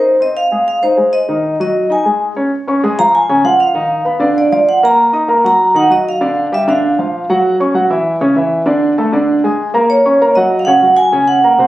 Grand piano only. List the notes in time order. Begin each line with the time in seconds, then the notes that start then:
Already playing: D#4 D#5
0.20 C4 C5
0.52 G#3 G#4
0.84 D#4 D#5
0.97 G#3 G#4
1.29 D#3 D#4
1.60 F#3 F#4
1.90 D#4 D#5
2.06 G#3 G#4
2.36 C#4 C#5
2.67 C#4 C#5 C#6
2.83 G#3 G#4 G#5
2.99 F3 F4 F5
3.29 C#3 C#4 C#5
3.44 F3 F4 F5
3.74 D#3 D#4 D#5
4.05 B3 B4 B5
4.20 D3 D4 D5
4.52 F3 F4 F5
4.83 A#3 A#4 A#5
5.13 D#4 D#5 D#6
5.28 A#3 A#4 A#5
5.44 F#3 F#4 F#5
5.74 D#3 D#4 D#5
5.90 F#3 F#4 F#5
6.21 D3 D4 D5
6.52 G3 G4 G5
6.68 D3 D4 D5
6.99 F3 F4 F5
7.29 F#3 F#4 F#5
7.60 C#4 C#5 C#6
7.74 F#3 F#4 F#5
7.90 E3 E4 E5
8.21 C#3 C#4 C#5
8.36 E3 E4 E5
8.66 D3 D4 D5
8.98 A3 A4 A5
9.12 D3 D4 D5
9.44 G#3 G#4 G#5
9.74 A#3 A#4 A#5
10.05 C#4 C#5 C#6
10.21 A#3 A#4 A#5
10.36 F#3 F#4 F#5
10.67 C#3 C#4 C#5
10.82 F#3 F#4 F#5
11.12 C#3 C#4 C#5
11.44 A#3 A#4 A#5
11.58 C3 C4 C5